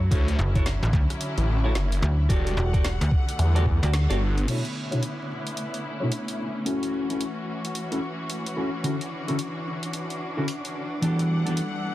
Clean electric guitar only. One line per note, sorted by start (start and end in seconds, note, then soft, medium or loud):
0.11 0.24 E4 medium
0.11 0.24 F#4 medium
0.11 0.24 A4 medium
0.11 0.24 C#5 medium
0.55 0.63 E4 medium
0.55 0.63 F#4 medium
0.55 0.63 A4 medium
0.55 0.63 C#5 medium
1.64 1.72 E4 medium
1.64 1.72 F#4 medium
1.64 1.72 A4 medium
1.64 1.72 C#5 medium
2.29 2.70 F#4 medium
2.29 2.70 G4 medium
2.29 2.70 A4 medium
2.29 2.70 D5 medium
2.73 2.87 F#4 medium
2.73 2.87 G4 medium
2.73 2.87 A4 medium
2.73 2.87 D5 medium
3.55 3.63 F#4 medium
3.55 3.63 G4 medium
3.55 3.63 A4 medium
3.55 3.63 D5 medium
3.82 3.90 F#4 medium
3.82 3.90 G4 medium
3.82 3.90 A4 medium
3.82 3.90 D5 medium
4.10 4.18 F#4 medium
4.10 4.18 G4 medium
4.10 4.18 A4 medium
4.10 4.18 D5 loud
4.47 4.60 B2 medium
4.47 4.60 D4 medium
4.47 4.60 E4 medium
4.47 4.60 F#4 medium
4.47 4.60 A4 medium
4.47 4.60 C#5 medium
4.91 4.99 B2 medium
4.91 4.99 D4 medium
4.91 4.99 E4 medium
4.91 4.99 F#4 medium
4.91 4.99 A4 medium
4.91 4.99 C#5 loud
6.00 6.09 B2 medium
6.00 6.09 D4 medium
6.00 6.09 E4 medium
6.00 6.09 F#4 medium
6.00 6.09 A4 medium
6.00 6.09 C#5 medium
6.65 7.06 C#4 medium
6.65 7.06 E4 medium
6.65 7.06 F#4 medium
6.65 7.06 A4 medium
7.10 7.23 C#4 medium
7.10 7.23 E4 medium
7.10 7.23 F#4 medium
7.10 7.23 A4 medium
7.91 7.99 C#4 medium
7.91 7.99 E4 medium
7.91 7.99 F#4 medium
7.91 7.99 A4 medium
8.56 8.69 C#4 medium
8.56 8.69 E4 medium
8.56 8.69 F#4 medium
8.56 8.69 A4 medium
8.83 8.96 D3 medium
8.83 8.96 C#4 medium
8.83 8.96 E4 medium
8.83 8.96 F#4 medium
8.83 8.96 A4 medium
9.28 9.36 D3 medium
9.28 9.36 C#4 medium
9.28 9.36 E4 medium
9.28 9.36 F#4 medium
9.28 9.36 A4 medium
10.37 10.45 D3 medium
10.37 10.45 C#4 medium
10.37 10.45 E4 medium
10.37 10.45 F#4 medium
10.37 10.45 A4 medium
11.02 11.42 E3 medium
11.02 11.42 B3 medium
11.02 11.42 D4 medium
11.02 11.42 F#4 medium
11.02 11.42 G4 medium
11.02 11.42 A4 medium
11.46 11.59 E3 medium
11.46 11.60 B3 medium
11.46 11.59 D4 medium
11.46 11.59 F#4 medium
11.46 11.59 G4 medium
11.46 11.60 A4 medium